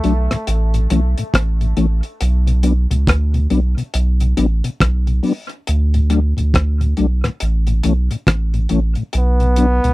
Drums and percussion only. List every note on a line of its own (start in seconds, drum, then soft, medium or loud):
0.04 closed hi-hat medium
0.31 cross-stick medium
0.31 closed hi-hat medium
0.47 closed hi-hat medium
0.74 closed hi-hat medium
0.90 closed hi-hat medium
1.18 closed hi-hat medium
1.34 kick loud
1.34 cross-stick loud
1.34 closed hi-hat medium
1.61 closed hi-hat soft
1.77 closed hi-hat medium
2.03 closed hi-hat soft
2.21 closed hi-hat medium
2.47 closed hi-hat soft
2.63 closed hi-hat medium
2.91 closed hi-hat medium
3.07 kick loud
3.07 cross-stick loud
3.07 closed hi-hat medium
3.34 closed hi-hat soft
3.50 closed hi-hat medium
3.78 closed hi-hat medium
3.94 closed hi-hat medium
4.20 closed hi-hat medium
4.37 closed hi-hat medium
4.64 closed hi-hat medium
4.80 kick loud
4.80 cross-stick loud
4.80 closed hi-hat medium
5.07 closed hi-hat soft
5.23 open hi-hat medium
5.49 closed hi-hat medium
5.67 closed hi-hat medium
5.94 closed hi-hat soft
6.10 closed hi-hat medium
6.38 closed hi-hat medium
6.54 kick loud
6.54 cross-stick loud
6.54 closed hi-hat medium
6.81 closed hi-hat soft
6.97 closed hi-hat medium
7.24 cross-stick medium
7.24 closed hi-hat medium
7.40 closed hi-hat medium
7.67 closed hi-hat medium
7.83 closed hi-hat medium
8.11 closed hi-hat medium
8.27 kick loud
8.27 cross-stick loud
8.27 closed hi-hat medium
8.54 closed hi-hat soft
8.69 closed hi-hat medium
8.95 closed hi-hat soft
9.13 closed hi-hat medium
9.40 closed hi-hat soft
9.56 closed hi-hat medium
9.84 closed hi-hat medium